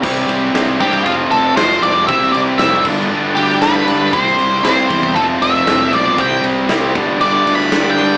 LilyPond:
<<
  \new Staff \with { instrumentName = "Lead electric guitar" } { \time 4/4 \key c \major \tempo 4 = 117 r4. g'8 f'8 a'8 c''8 d''8 | e''8 d''8 e''8 r4 g'8 b'4 | c''4 c''4 a'8 e''4 d''8 | g''8 r4. \tuplet 3/2 { d''4 b''8~ b''8 g''4 } | }
  \new Staff \with { instrumentName = "Distorted electric guitar" } { \time 4/4 \key c \major <c e g c' e'>4 <c e g c' e'>8 <c e g c' e'>8 <f a c' f'>4 <f a c' f'>8 <f a c' f'>8 | <c g c' e'>4 <c g c' e'>8 <g, d g b d'>8 <g, d g b d'>4 <g, d g b d'>8 <g, d g b d'>8 | <c g c' e'>4 <c g c' e'>8 <c g c' e'>8 <f a c' f'>4 <f a c' f'>8 <f a c' f'>8 | <c g c' e'>4 <c g c' e'>8 <g, d g b d'>8 <g, d g b d'>4 <g, d g b d'>8 <g, d g b d'>8 | }
  \new Staff \with { instrumentName = "Distorted electric guitar" } { \clef bass \time 4/4 \key c \major <c g c'>4 <c g c'>8 <c g c'>8 <f, c f>4 <f, c f>8 <f, c f>8 | <c g c'>4 <c g c'>8 <g, d g>8 <g, d g>4 <g, d g>8 <g, d g>8 | <c g c'>4 <c g c'>8 <c g c'>8 <f, c f>4 <f, c f>8 <f, c f>8 | <c g c'>4 <c g c'>8 <g, d g>8 <g, d g>4 <g, d g>8 <g, d g>8 | }
  \new Staff \with { instrumentName = "Overdriven electric guitar" } { \clef bass \time 4/4 \key c \major <c g c'>4 <c g c'>8 <c g c'>8 <f, c f>4 <f, c f>8 <f, c f>8 | <c g c'>4 <c g c'>8 <g, d g>8 <g, d g>4 <g, d g>8 <g, d g>8 | <c g c'>4 <c g c'>8 <c g c'>8 <f, c f>4 <f, c f>8 <f, c f>8 | <c g c'>4 <c g c'>8 <g, d g>8 <g, d g>4 <g, d g>8 <g, d g>8 | }
  \new Staff \with { instrumentName = "Fingered electric bass" } { \clef bass \time 4/4 \key c \major c,8 c,8 c,8 g,8 f,,8 f,,8 f,,8 f,,8 | c,8 c,8 f,,8 g,,8 g,,8 d,8 g,4 | c,8 c,8 c,8 e,8 f,,8 f,,8 f,,8 b,,8 | c,8 c,8 c,8 g,,8 g,,8 d,8 g,4 | }
  \new DrumStaff \with { instrumentName = "Drums" } \drummode { \time 4/4 <cymc bd>8 cymr8 <cymr sn>8 <bd cymr>16 bd16 <bd cymr>8 cymr8 <cymr sn>8 cymr8 | <bd cymr>16 sn16 cymr8 <cymr sn>8 <cymc bd>8 r8 cymr16 sn16 <cymr sn>8 cymr8 | <bd cymr>8 cymr8 <cymr sn>8 <bd cymr>16 bd16 <bd cymr>8 cymr16 sn16 <cymr sn>8 cymr8 | <bd cymr>8 cymr8 <cymr sn>8 <bd cymr>8 cymr8 cymr16 sn16 <cymr sn>8 cymr8 | }
>>